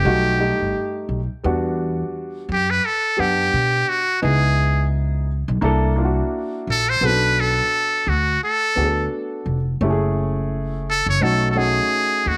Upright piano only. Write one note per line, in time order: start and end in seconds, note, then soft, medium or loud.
0.04 0.34 G3 medium
0.04 0.34 A3 medium
0.04 0.34 D#4 medium
0.04 0.35 F#4 medium
0.38 1.18 G3 medium
0.38 1.19 A3 medium
0.38 1.19 D#4 medium
0.38 1.20 G4 medium
1.44 2.48 G3 medium
1.44 2.48 B3 medium
1.44 2.49 D4 medium
1.44 2.49 F#4 medium
3.17 3.97 B3 medium
3.17 3.98 D4 medium
3.17 3.97 G4 medium
3.17 3.99 F#5 medium
4.22 5.27 B3 medium
4.22 5.27 D#4 medium
4.22 5.27 E4 medium
4.22 5.28 G#4 medium
5.61 5.91 A#3 medium
5.61 5.92 D4 medium
5.61 5.92 E4 medium
5.61 5.93 A4 loud
5.96 6.76 A#3 medium
5.96 6.76 D4 medium
5.96 6.77 E4 medium
5.96 6.05 F4 medium
6.05 6.80 F#4 medium
7.01 8.06 B3 medium
7.01 7.10 C4 medium
7.01 8.07 F#4 medium
7.01 8.07 A4 medium
7.08 8.09 D4 medium
8.76 9.55 B3 medium
8.76 9.56 D4 medium
8.76 9.56 F#4 medium
8.76 8.85 G#4 medium
8.85 9.60 A4 medium
9.81 10.85 A3 medium
9.81 10.86 C#4 medium
9.81 10.86 E4 medium
9.81 9.90 G4 medium
9.90 10.90 G#4 medium
11.21 11.50 A3 medium
11.21 11.50 C#4 medium
11.21 11.51 D#4 medium
11.21 11.51 F#4 medium
11.55 12.35 A3 medium
11.55 12.35 C#4 medium
11.55 12.35 D#4 medium
11.55 12.36 F#4 medium